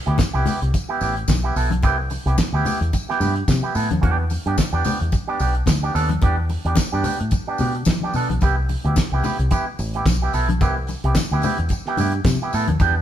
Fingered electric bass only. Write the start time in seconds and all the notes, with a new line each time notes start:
0.07 D2
0.34 C2
0.62 C2
1.01 A1
1.28 B1
1.56 B1
1.83 C2
2.26 C2
2.53 D2
2.81 E2
3.20 G2
3.48 C3
3.75 A2
3.91 D#2
4.03 E2
4.46 G2
4.73 E2
5.01 E2
5.40 B1
5.67 D2
5.95 D#2
6.23 E2
6.65 E2
6.93 G2
7.21 A2
7.60 B2
7.86 E3
8.14 B2
8.30 B1
8.42 C2
8.84 D2
9.12 C2
9.39 C2
9.79 A1
10.06 B1
10.34 B1
10.61 C2
11.04 C2
11.31 D2
11.59 E2
11.98 G2
12.25 C3
12.54 A2
12.69 D#2
12.80 E2